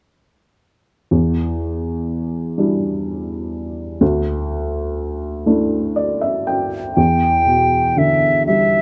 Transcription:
1.11 E2
2.58 G3 D4 E4
4.01 D2
5.46 A3 D4 E4
5.96 D5
6.21 E5
6.47 G5
6.96 E2 G5
7.46 B2
7.97 D3 E5
8.46 G3 E5

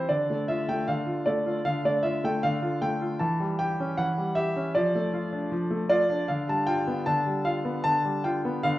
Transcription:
0.09 D3 D5
0.30 A3
0.48 F4 E5
0.68 A3 G5
0.88 D3 F5
1.07 F4
1.26 A3 D5
1.46 F4
1.65 D3 F5
1.85 A3 D5
2.03 F4 E5
2.24 A3 G5
2.43 D3 F5
2.62 F4
2.82 A3 G5
3.01 F4
3.19 E3 A5
3.40 G3
3.59 G4 G5
3.80 C#4
3.97 E3 F#5
4.18 G3
4.35 G4 E5
4.56 C#4
4.75 F3 D5
4.95 A3
5.13 F4
5.32 D4
5.51 F3
5.70 A3
5.89 F4 D5
6.09 D4
6.28 D3 F5
6.48 G3 A5
6.66 F4 G5
6.87 B3
7.06 D3 A5
7.27 G3
7.45 F4 F5
7.65 B3
7.84 D3 A5
8.05 G3
8.24 F4 G5
8.45 B3
8.63 D3 F5

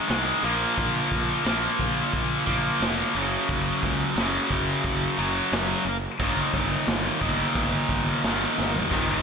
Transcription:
0.08 C2 G#2 D#3 G#3, snare, open hi-hat
0.43 A#1 A#2 F3 A#3
0.78 A#1, kick, open hi-hat
1.11 A#1, kick, snare
1.45 A#1 A#2 F3 A#3, snare, open hi-hat
1.79 A#1, kick
2.13 A#1, kick, open hi-hat
2.47 A#1 A#2 F3 A#3, kick
2.80 F1, snare, open hi-hat
3.15 F#1 F#2 C#3 F#3
3.49 F#1, kick, open hi-hat
3.83 C#2, kick, snare
4.16 F#1 F#2 C#3, snare, open hi-hat
4.20 F#3
4.50 F#1, kick
4.84 F#1, kick, open hi-hat
5.18 F#1 F#2 C#3 F#3
5.52 F#1, snare, open hi-hat
5.85 F#1
6.19 G1 D#2 A#2 D#3, kick, open hi-hat
6.54 G1, kick, snare
6.87 G1, snare, open hi-hat
7.21 G1 D#2 A#2 D#3, kick
7.55 G1, kick, open hi-hat
7.89 G1, kick
8.23 G1 D#2 A#2 D#3, snare, open hi-hat
8.58 G1, snare
8.75 floor tom
8.90 G1 D#2 A#2 D#3, kick, crash

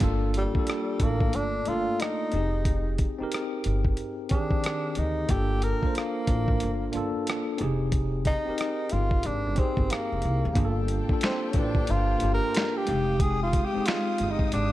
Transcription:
0.00 G1 A#3 D4 F4 A4, kick, closed hi-hat
0.34 G3, closed hi-hat
0.54 A#3 D4 F4, muted upright bass stroke, kick
0.59 A4
0.67 cross-stick, closed hi-hat
0.98 A1 A3 D4 F4, kick, closed hi-hat
1.03 A#3 A4
1.21 kick
1.33 G1 D4, closed hi-hat
1.65 G1 A3 F4 D5, closed hi-hat
1.70 A#3 A4
2.00 D#4, cross-stick, closed hi-hat
2.32 F1 C4 D#4 G4, closed hi-hat
2.37 G#4
2.65 kick, closed hi-hat
2.98 kick, closed hi-hat
3.18 C4 D#4 G4, muted upright bass stroke
3.23 A#4
3.32 cross-stick, closed hi-hat
3.64 G1, closed hi-hat
3.85 kick
3.97 closed hi-hat
4.29 D#3 C4 D4 G4, kick, closed hi-hat
4.34 G#4
4.51 kick
4.64 cross-stick, closed hi-hat
4.95 D2 D#4, closed hi-hat
5.28 G1 A#3 D4 F4 G4, kick, closed hi-hat
5.33 A4
5.62 A#4, closed hi-hat
5.81 A#3 D4 F4, muted upright bass stroke, kick
5.87 C5
5.95 A#3, cross-stick, closed hi-hat
6.26 A1 A#3 D4 F4, kick, closed hi-hat
6.31 A#4
6.48 kick
6.60 G1, closed hi-hat
6.92 G1 A#3 D4 F4, closed hi-hat
6.97 A4
7.27 cross-stick, closed hi-hat
7.58 F1 C4 D#4 G4, closed hi-hat
7.63 G#4
7.92 kick, closed hi-hat
8.25 D#4, kick, closed hi-hat
8.45 C4 D#4 G4, muted upright bass stroke
8.50 A#4
8.58 cross-stick, closed hi-hat
8.89 G1 F4, closed hi-hat
9.11 kick
9.23 G#1 D4, closed hi-hat
9.46 G1
9.55 C4 D#4 G4, kick, closed hi-hat
9.60 G#4
9.77 G1, kick
9.90 A#3, cross-stick, closed hi-hat
10.12 F1
10.22 C2, closed hi-hat
10.45 D2
10.54 G1 A#3 D4 F4 G4 F5 G5 A5, kick, closed hi-hat
10.58 G#4
10.65 A4
10.88 closed hi-hat
11.08 A#3 D4 F4, muted upright bass stroke, kick
11.13 A4
11.21 C4, finger snap, snare, closed hi-hat
11.50 A#3 C#4, kick, closed hi-hat
11.55 A1 D4 F4 B4
11.65 C5
11.75 kick
11.87 G1 F4, closed hi-hat
12.18 A#3 D4 F4, closed hi-hat
12.22 G1 G4
12.34 A#4
12.55 finger snap, snare, closed hi-hat
12.77 G4
12.85 F1 G#3 C4 D#4 G5 D#6, closed hi-hat
12.90 G4
13.20 G#4, kick, closed hi-hat
13.43 F4
13.53 kick, closed hi-hat
13.65 G4
13.73 G#3 C4 D#4, muted upright bass stroke
13.78 G#4
13.86 F4, finger snap, snare, closed hi-hat
14.18 G1, closed hi-hat
14.31 D#4
14.39 kick
14.52 G#1 D4, closed hi-hat

